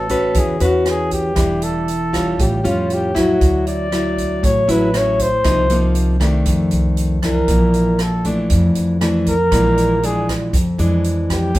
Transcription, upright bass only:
0.00 0.32 A1 medium
0.35 0.59 E2 medium
0.61 1.34 E2 medium
1.37 2.35 E1 loud
2.40 2.63 A1 medium
2.65 3.38 F2 medium
3.41 4.39 D2 medium
4.44 4.67 A1 medium
4.69 5.41 A1 medium
5.44 6.42 C2 loud
6.47 6.70 F2 medium
6.73 7.45 C2 medium
7.48 8.46 A#1 loud
8.50 8.74 F2 medium
8.76 9.48 F2 medium
9.52 10.49 A#1 medium
10.53 10.77 F2 medium
10.79 11.51 F2 medium
11.55 11.59 A1 medium

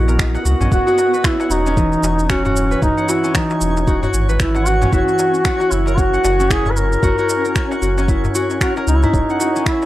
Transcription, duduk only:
0.00 0.19 G#4 loud
0.72 1.26 F#4 loud
1.25 1.52 E4 medium
1.51 2.31 D#4 loud
2.30 2.82 C#4 medium
2.82 3.11 D#4 loud
3.09 3.34 E4 medium
3.35 4.10 D#4 medium
4.40 4.68 E4 medium
4.67 4.92 F#4 medium
4.92 5.73 F#4 loud
5.71 5.99 E4 medium
5.98 6.53 F#4 loud
6.51 6.72 G#4 loud
6.70 6.78 B4 medium
6.77 7.82 A#4 loud
8.62 8.74 F#4 medium
8.88 8.96 D#4 medium
8.95 9.04 E4 medium
9.03 9.66 D#4 medium
9.66 9.86 E4 medium

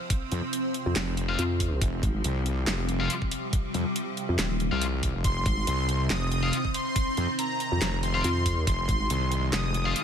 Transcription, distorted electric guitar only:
1.29 1.39 C4 medium
1.29 1.39 F4 medium
1.29 1.39 F5 loud
3.00 3.10 C4 medium
3.00 3.10 F4 medium
3.00 3.10 F5 loud
4.72 4.82 C4 medium
4.72 4.82 F4 medium
4.72 4.82 F5 medium
6.43 6.53 C4 medium
6.43 6.53 F4 medium
6.43 6.53 F5 loud
8.14 8.24 C4 medium
8.14 8.24 F4 medium
8.14 8.24 F5 loud
9.86 9.96 C4 medium
9.86 9.96 F4 medium
9.86 9.96 F5 loud

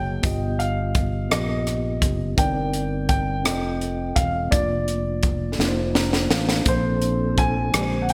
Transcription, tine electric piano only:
0.00 0.26 A#3 medium
0.00 0.26 F#4 medium
0.00 0.26 G#4 medium
0.00 0.26 C#5 medium
0.00 0.26 D#5 medium
0.22 1.27 G2 medium
0.22 0.93 B3 medium
0.22 0.93 F4 medium
0.22 0.94 G4 medium
0.22 0.95 D#5 medium
1.29 2.00 B3 medium
1.29 2.01 F4 medium
1.29 2.01 G4 medium
1.29 2.02 D#5 medium
2.36 3.41 G2 medium
2.36 3.07 C4 medium
2.36 3.07 D#4 medium
2.36 3.08 A#4 medium
2.40 3.09 D5 medium
3.43 4.14 C4 medium
3.43 4.15 F4 medium
3.43 4.15 A4 medium
3.43 4.16 D#5 medium
4.50 5.21 A#3 medium
4.50 5.22 D4 medium
4.50 5.22 F4 medium
4.50 5.23 D5 medium
5.58 6.28 A#3 medium
5.58 6.29 D#4 medium
5.58 6.30 F4 medium
5.58 5.67 A#4 medium
5.68 6.34 C5 medium
5.95 6.28 A#5 medium
6.31 6.64 F5 medium
6.64 7.70 A#2 medium
6.64 7.35 A#3 medium
6.64 7.36 D4 medium
6.64 7.37 A4 medium
6.64 6.74 A#4 medium
6.75 7.41 C5 medium
7.71 8.13 G#3 medium
7.71 8.13 A#3 medium
7.71 8.13 D4 medium
7.71 8.13 G4 medium
7.71 7.81 B4 soft
7.81 8.13 C5 medium

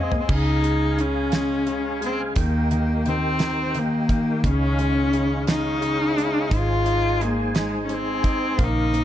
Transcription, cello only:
0.03 0.14 C4 medium
0.12 0.22 A#3 medium
0.21 0.32 C4 medium
0.31 1.02 D#4 loud
1.00 2.03 C#4 medium
2.05 2.20 C4 medium
2.40 3.10 A#3 medium
3.09 3.80 C4 medium
3.79 4.49 A#3 loud
4.47 5.49 C#4 loud
5.50 6.56 D#4 medium
6.54 7.25 F4 loud
7.24 7.56 A#3 medium
7.59 7.82 G#3 medium
7.86 7.96 C#4 medium
7.94 8.65 C4 loud
8.63 9.04 D#4 loud

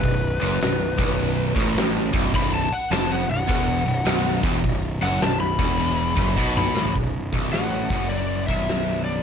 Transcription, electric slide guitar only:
0.00 1.54 B4 loud
2.36 2.54 B5 loud
2.55 2.72 A5 medium
2.73 2.91 F#5 medium
2.91 3.10 A5 medium
3.12 3.30 F#5 loud
3.31 4.42 F#5 medium
5.03 5.21 F#5 loud
5.22 5.40 A5 medium
5.40 6.53 B5 loud
6.58 6.95 B5 loud
7.53 8.13 F#5 medium
8.09 8.45 D5 medium
8.46 9.04 E5 medium
9.05 9.23 D5 medium

